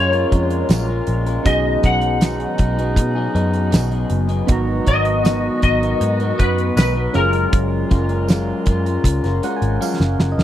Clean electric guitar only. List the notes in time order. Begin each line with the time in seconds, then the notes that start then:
Already playing: C#4 F4 A#4
0.11 C#4 F4 A#4
0.30 G#3 C#4 F4 A#4
0.69 F#3 G#3 C#4 F4 A#4
0.88 C#4 F4 A#4
1.26 C#4 F4 A#4
1.44 B2 D#3 F#3 B3 D#4 G#4
1.82 F#3 B3 D#4 G#4
2.21 B2 D#3 F#3 B3 D#4 G#4
2.58 F#3 B3 D#4 G#4
2.77 F#3 B3 D#4 G#4
3.15 F#3 B3 D#4 G#4
3.34 F#3 B3 D#4 G#4
3.71 B2 D#3 F#3 B3 D#4 G#4
3.90 F#3 B3 D#4 G#4
4.28 F#3 B3 D#4 G#4
4.47 G#2 D#3 F#3 B3 D#4 A#4
4.85 F#3 B3 D#4 A#4
5.23 G#2 D#3 F#3 B3 D#4 A#4
5.61 F#3 B3 D#4 A#4
5.81 F#3 B3 D#4 A#4
6.20 F#3 B3 D#4 A#4
6.38 F#3 B3 D#4
6.76 G#2 D#3 F#3 B3 D#4 A#4
6.95 F#3 B3 D#4 A#4
7.14 F#3 G#3 C#4 F4 A#4
7.89 G#3 C#4 F4 A#4
8.28 F#3 G#3 C#4 F4 A#4
8.66 G#3 C#4 F4 A#4
8.85 C#4 F4 A#4
9.24 C#4 F4 A#4
9.43 G#3 C#4 F4 A#4
9.81 F#3 G#3 C#4 F4 A#4
10.00 C#4 F4 A#4
10.38 C#4 F4 A#4